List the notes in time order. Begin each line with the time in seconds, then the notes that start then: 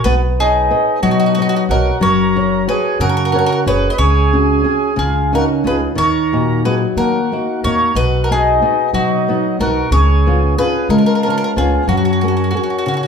0.04 B1 B3 F#4 B4
0.40 D#4 G#4 B4 C#5 D#5
0.71 B4 C#5 D#5
1.03 B2 F#3 D#4 F#4
1.11 F#4
1.20 F#4
1.26 F#4
1.35 B3 F#4
1.39 F#4 C#5 D#5
1.49 F#4
1.56 F#4
1.69 B1 F#4 A#4 C#5 D#5
2.00 F#1 F#3 A#4 C#5
2.36 F#4 C#5
2.67 F#4 G#4 B4 C#5
2.99 F#2 C#3 F#4 A#4
3.09 A#4
3.17 A#4
3.25 A#4
3.32 F#4 A#4 C#5
3.39 A#4
3.46 A#4
3.52 A#4
3.66 F#1 F#4 G#4 A#4 B4 C#5
3.90 B4 D#5
3.98 C#2 C#3 G#4 C#5
4.33 C#4 F#4 G#4
4.64 C#4 F#4 G#4
4.96 C#2 C#3 F4 G#4
5.33 C#4 D#4 F#4 A#4 F5
5.64 C#2 C#4 D#4 F4 G#4 B4
5.95 D#2 D#3 A#4 C#5
6.32 A#2 D#4 F#4
6.65 F#3 D#4 F#4 G#4 B4
6.96 D#3 A#3 F#4 A#4
7.32 A#3 D#4 F#4
7.63 D#2 A#3 D#4 F#4 A#4 C#5
7.95 B1 B2 F#4 B4
8.22 F#4 A#4
8.31 B3 D#4 F#4 G#4
8.62 B3 D#4 F#4
8.93 B2 F#3 D#4 F#4
9.28 B3 D#4 F#4
9.59 B1 B3 D#4 F#4 A#4
9.90 C#2 C#3 G#4 C#5
10.27 B3 C#4 F4
10.58 B3 C#4 F4 G#4 B4
10.89 C#3 G#3 F4 A#4
10.98 A#4
11.06 A#4
11.15 A#4
11.23 B3 C#4 F4 A#4
11.30 A#4
11.38 A#4
11.44 A#4
11.56 C#2 B3 C#4 F4 G#4
11.87 F#2 F#3 C#4 F#4
11.97 F#4
12.05 F#4
12.13 F#4
12.21 F#4 G#4 A#4
12.28 F#4
12.37 F#4
12.44 F#4
12.51 F#4 G#4 A#4
12.57 F#4
12.63 F#4
12.70 F#4
12.78 F#4
12.86 C#3 C#4 F#4
12.94 F#4
13.03 F#4